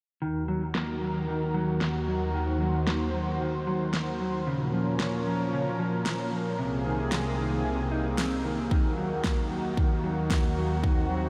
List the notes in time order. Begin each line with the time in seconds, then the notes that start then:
0.22 D#2 D#3 F#4 A#4
0.48 F#3
0.75 A#3, snare
1.01 F#3
1.28 D#3
1.54 F#3
1.81 A#3, snare
2.08 F#3
2.34 D#3 C5
2.61 F#3
2.87 A#3, snare
3.14 F#3
3.41 D#3
3.67 F#3
3.94 A#3, snare
4.20 F#3
4.46 A#2 C#3 F3 C#4 A#4
4.73 F3
5.00 A#3, snare
5.26 F3
5.53 C#3
5.79 F3
6.06 A#3, snare
6.32 F3
6.59 C2 C3 A#3 G#4
6.85 D#3
7.12 G#3, snare
7.39 D#3
7.65 C3
7.92 D#4
8.18 C4, snare
8.45 D#3
8.71 D#2 D#3 F#4, kick
8.98 F#3
9.24 A#3, kick, snare
9.51 F#3
9.77 D#3, kick
10.04 F#3
10.30 A#3, kick, snare
10.57 F#3
10.84 D#3 C4, kick
11.10 F#3